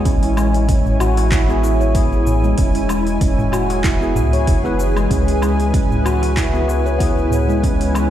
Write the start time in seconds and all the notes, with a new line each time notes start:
Already playing: E4 C#5 G#5
0.05 A1 C#4, kick, open hi-hat, cabasa
0.23 open hi-hat, darbuka ka, cabasa
0.37 G#3, darbuka tek, cabasa, low woodblock
0.54 open hi-hat, cabasa
0.69 C#4, kick, open hi-hat, cabasa
0.86 darbuka dum, cabasa
1.00 F#4, darbuka tek, cabasa, low woodblock
1.17 open hi-hat, darbuka tek, cabasa
1.32 E4, kick, clap, open hi-hat, cabasa
1.48 B3 E4 F#4 G#4, darbuka tek, cabasa
1.63 darbuka ka, darbuka tek, cabasa
1.81 C#5, cabasa
1.95 B3 E4 G#4, kick, open hi-hat, cabasa
2.12 G#4, cabasa
2.27 darbuka dum, cabasa
2.44 G#3, cabasa
2.58 E1 C#4 G#4 B4, kick, open hi-hat, cabasa
2.75 open hi-hat, darbuka ka, cabasa
2.89 G#3, darbuka tek, cabasa, low woodblock
3.07 open hi-hat, cabasa
3.21 E1 C#4, kick, open hi-hat, cabasa
3.38 darbuka dum, cabasa
3.52 F#4, darbuka tek, cabasa, low woodblock
3.70 open hi-hat, darbuka tek, cabasa
3.84 E4, kick, clap, open hi-hat, cabasa
4.01 B3 E4 F#4 G#4, cabasa
4.15 C#2, darbuka tek, darbuka dum, cabasa
4.33 C#5, open hi-hat, cabasa
4.47 F#1, kick, open hi-hat, darbuka ka, cabasa
4.64 B3 E4 G#4 B4, darbuka tek, cabasa
4.79 darbuka ka, cabasa
4.96 G#3, cabasa, low woodblock
5.10 C#2 C#4 E4 C#5, kick, open hi-hat, cabasa
5.28 open hi-hat, darbuka ka, cabasa
5.42 G#3, darbuka tek, cabasa, low woodblock
5.60 open hi-hat, cabasa
5.74 C#4, kick, open hi-hat, cabasa
5.92 darbuka dum, cabasa
6.05 F#4, darbuka tek, cabasa, low woodblock
6.22 open hi-hat, darbuka tek, cabasa
6.37 E4, kick, clap, open hi-hat, cabasa
6.53 B3 E4 F#4 G#4, darbuka tek, cabasa
6.68 darbuka ka, darbuka tek, cabasa
6.86 C#5, cabasa
6.98 B3 E4, kick, open hi-hat, cabasa
7.03 G#4
7.17 G#4, cabasa
7.31 darbuka dum, cabasa
7.49 G#3, cabasa
7.63 C#4, kick, open hi-hat, cabasa
7.80 open hi-hat, darbuka ka, cabasa
7.95 G#3, darbuka tek, cabasa, low woodblock